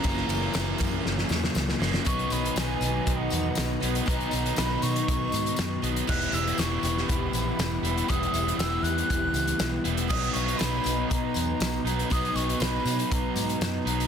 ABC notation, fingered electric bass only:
X:1
M:4/4
L:1/8
Q:1/4=119
K:B
V:1 name="Fingered electric bass" clef=bass
F,,, F,,, F,,, F,, F,,, E,, C,, F,,, | B,,, B,,, B,,, B,,, B,,, E,, B,,, B,,, | B,,, B,,, B,,, B,, B,,, G,, F,, B,,, | E,,, E,,, E,,, E,,, E,,, A,,, E,,, E,,, |
E,,, E,,, E,,, E,, E,,, C,, B,,, E,,, | B,,, B,,, B,,, B,,, B,,, E,, B,,, B,,, | B,,, B,,, B,,, B,, B,,, G,, F,, B,,, |]